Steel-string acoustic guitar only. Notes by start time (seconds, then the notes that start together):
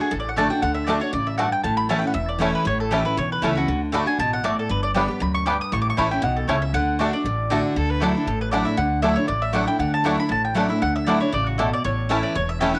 0.00 D4 F#4
0.11 A2
0.37 D3 A3 D4 F#4
0.50 D4 F#4
0.62 D3
0.88 D3 A3 D4 F#4
1.00 D4 F#4
1.13 C#3
1.39 G2
1.64 A2
1.89 E3 A3 C#4 E4
2.02 C#4 E4
2.14 E2
2.39 E3 A3 C#4 E4
2.65 A2
2.91 E3 A3 C#4 E4
3.05 C#4 E4
3.17 E2
3.42 E3 A3 C#4 E4
3.55 C#4 E4
3.68 D3
3.92 D3 A3 D4 F#4
4.06 D4 F#4
4.19 B2
4.44 A2
4.69 G2
4.94 D3 G3 B3 G4
5.08 B3 G4
5.20 F#2
5.46 G2
5.72 A2
5.97 E3 A3 C#4 E4
6.11 C#4 E4
6.22 B2
6.49 C#3
6.74 D3
6.99 D3 A3 D4 F#4
7.13 D4 F#4
7.25 A2
7.50 D3 A3 D4 F#4
7.76 D3
8.02 F#3 A3 D4 E4
8.15 D4 E4
8.27 A2
8.52 F#3 A3 D4 E4
8.66 D4 E4
8.77 D3
9.02 F#3 A3 D4 E4
9.17 D4 E4
9.28 A2
9.53 F#3 A3 D4 E4
9.67 D4 E4
9.80 D3
10.04 F#3 A3 D4 E4
10.18 D4 E4
10.29 A2
10.55 F#3 A3 D4 E4
10.69 D4 E4
10.82 D3
11.07 F#3 A3 D4 E4
11.20 D4 E4
11.33 C#3
11.59 B2
11.85 A2
12.09 E3 A3 C#4 E4
12.35 E2
12.61 E3 A3 C#4 E4
12.74 C#4 E4